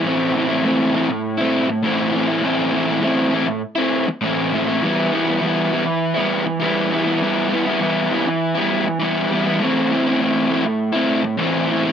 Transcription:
X:1
M:4/4
L:1/16
Q:1/4=101
K:Ador
V:1 name="Overdriven electric guitar"
[A,,E,A,CE]2 [E,A,CE] [A,CE] [A,,E,A,CE]2 [E,A,CE]3 [A,CE]3 [A,,E,A,CE]2 [E,A,CE] [A,CE] | [A,,E,A,CE]2 [E,A,CE] [A,CE] [A,,E,A,CE]2 [E,A,CE]3 [A,CE]3 [A,,E,A,CE]2 [E,A,CE] [A,CE] | [E,G,B,E]2 [E,G,B,E] [G,B,E] [E,G,B,E]2 [E,G,B,E]3 [G,B,E]3 [E,G,B,E]2 [E,G,B,E] [G,B,E] | [E,G,B,E]2 [E,G,B,E] [G,B,E] [E,G,B,E]2 [E,G,B,E]3 [G,B,E]3 [E,G,B,E]2 [E,G,B,E] [G,B,E] |
[A,,E,A,CE]2 [E,A,CE] [A,CE] [A,,E,A,CE]2 [E,A,CE]3 [A,CE]3 [A,,E,A,CE]2 [E,A,CE] [A,CE] |]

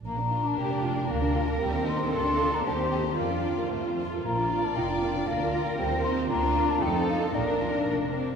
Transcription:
X:1
M:2/4
L:1/16
Q:1/4=115
K:Bb
V:1 name="Flute"
b3 a g4 | f2 f2 g2 c'2 | c'3 b a2 g2 | f4 z4 |
b3 a g4 | f2 f2 g2 c'2 | b3 a g2 f2 | d4 z4 |]
V:2 name="Violin section"
B8- | B4 G4 | B4 c4 | d4 c2 z2 |
d8- | d4 c4 | B4 A4 | B6 z2 |]
V:3 name="Cello section"
z4 G2 F2 | B8 | A4 G4 | F6 z2 |
z4 E2 D2 | B8 | F4 A4 | B6 z2 |]
V:4 name="Viola section"
D8- | D4 C4 | D4 C4 | F8- |
F8 | F4 C4 | D4 E4 | D6 z2 |]
V:5 name="Violin section"
B, D F D B, D F D | B, D F D G, C E C | B, D F D G, C E G | B, D F B A, C F A |
B, D F B F D B, D | B, D F B G, C E G | B, D F D A, C E F | B, D F D B,2 C2 |]
V:6 name="Double bass section" clef=bass
B,,,4 F,,,4 | D,,4 E,,4 | D,,4 E,,4 | F,,4 F,,4 |
B,,,4 F,,,4 | D,,4 E,,4 | D,,4 F,,4 | B,,,4 F,,,4 |]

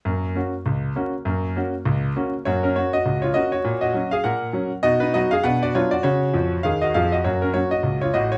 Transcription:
X:1
M:4/4
L:1/8
Q:"Swing" 1/4=201
K:F#
V:1 name="Grand piano"
z8 | z8 | [Fc] [CA] [Fc] [Fd]2 [Ec] [Fd] [Fc]- | [Fc] [Fd]2 [Ge] [Af]3 z |
[Fd] [DB] [Fd] [Ge] [Bf] [F=d] [Ec] [Fd] | [Fc]4 [Ge] [Fd] [Ge] [Fd] | [Fc] [CA] [Fc] [Fd]2 [Ec] [Fd] [Fc] |]
V:2 name="Grand piano"
[F,,A,]2 [A,CF]2 C,,2 [A,CF]2 | [F,,A,]2 [A,CF]2 C,,2 [A,CF]2 | [F,,A,]2 [A,C]2 C,,2 [A,C]2 | A,,2 [F,C]2 A,,2 [F,C]2 |
[B,,D]2 [F,B,D]2 [B,,=D]2 [F,B,D]2 | C,2 [E,,E,]2 [D,,D,]2 [E,,E,]2 | [F,,A,]2 [F,A,C]2 C,,2 [=A,,,=A,,]2 |]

